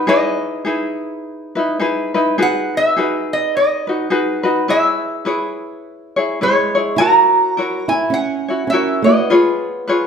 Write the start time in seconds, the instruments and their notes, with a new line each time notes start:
Already playing: resonator guitar played with a steel bar B4
0.07 ukulele D#4 E4 G#4 B4, resonator guitar played with a steel bar D#5
0.65 ukulele D#4 E4 G#4 B4
1.55 ukulele D#4 E4 B4
1.79 ukulele D#4 E4 G#4 B4
2.14 ukulele D#4 E4 B4
2.38 ukulele D#4 F#4 G#4 B4
2.42 resonator guitar played with a steel bar F#5
2.77 resonator guitar played with a steel bar E5
2.97 ukulele D#4 F#4 G#4 B4
3.33 resonator guitar played with a steel bar D#5
3.57 resonator guitar played with a steel bar D#5
3.87 ukulele D#4 F#4 B4
4.10 ukulele D#4 F#4 G#4 B4
4.43 ukulele D#4 F#4 B4
4.68 ukulele E4 G#4 B4 C#5, resonator guitar played with a steel bar E5
5.25 ukulele E4 G#4 B4 C#5
6.16 ukulele E4 G#4 C#5
6.41 steel-string acoustic guitar G#3, ukulele E4 G#4 B4 C#5, resonator guitar played with a steel bar C#5
6.75 ukulele E4 G#4 C#5
6.96 ukulele E4 F#4 A#4 C#5, steel-string acoustic guitar F#4, resonator guitar played with a steel bar A#5
7.57 ukulele E4 F#4 A#4 C#5
7.88 steel-string acoustic guitar E4, resonator guitar played with a steel bar G#5
8.10 steel-string acoustic guitar C#4, resonator guitar played with a steel bar F#5
8.48 ukulele E4 F#4 C#5
8.67 steel-string acoustic guitar C#4, resonator guitar played with a steel bar E5
8.73 ukulele E4 F#4 A#4 C#5
9.02 steel-string acoustic guitar B3, ukulele C#5, resonator guitar played with a steel bar D#5
9.07 ukulele E4 F#4
9.30 ukulele F4 G#4 B4 C#5
9.88 ukulele F4 G#4 B4 C#5